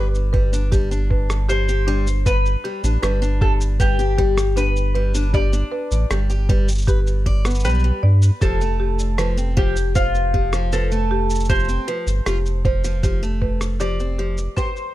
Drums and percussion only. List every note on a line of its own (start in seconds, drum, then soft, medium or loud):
0.15 shaker soft
0.34 kick loud
0.53 shaker medium
0.72 kick loud
0.72 shaker medium
0.92 shaker soft
1.11 kick medium
1.30 cross-stick medium
1.30 shaker medium
1.49 shaker medium
1.69 shaker soft
2.07 shaker medium
2.26 kick loud
2.26 shaker medium
2.46 shaker soft
2.84 shaker medium
3.03 cross-stick medium
3.03 shaker medium
3.23 shaker soft
3.41 kick loud
3.61 shaker medium
3.80 kick loud
3.80 shaker medium
3.99 shaker soft
4.18 kick medium
4.38 cross-stick medium
4.38 shaker medium
4.57 shaker medium
4.76 shaker soft
5.15 shaker medium
5.34 kick loud
5.53 shaker medium
5.91 shaker medium
6.11 cross-stick medium
6.11 shaker medium
6.30 shaker soft
6.49 kick loud
6.68 shaker medium
6.71 shaker medium
6.75 shaker soft
6.78 shaker soft
6.81 shaker soft
6.84 kick loud
6.84 shaker soft
6.88 shaker medium
7.07 shaker soft
7.26 kick medium
7.45 cross-stick medium
7.45 shaker medium
7.50 shaker medium
7.55 shaker soft
7.60 shaker soft
7.64 shaker medium
7.79 shaker soft
8.22 shaker medium
8.42 kick loud
8.42 shaker medium
8.61 shaker soft
8.99 shaker medium
9.18 cross-stick medium
9.18 shaker medium
9.38 shaker soft
9.57 kick loud
9.76 shaker medium
9.95 kick loud
9.95 shaker medium
10.15 shaker soft
10.34 kick medium
10.53 cross-stick medium
10.53 shaker medium
10.72 shaker medium
10.92 shaker soft
11.30 shaker medium
11.35 shaker medium
11.40 shaker soft
11.45 shaker soft
11.49 kick loud
11.49 shaker medium
11.54 shaker soft
11.59 shaker soft
11.64 shaker soft
11.69 shaker soft
12.07 shaker medium
12.26 cross-stick medium
12.26 shaker medium
12.46 shaker soft
12.65 kick loud
12.84 shaker medium
13.03 kick loud
13.03 shaker medium
13.23 shaker soft
13.42 kick medium
13.61 cross-stick medium
13.61 shaker medium
13.80 shaker medium
14.00 shaker soft
14.38 shaker medium
14.57 kick loud
14.57 shaker medium
14.76 shaker soft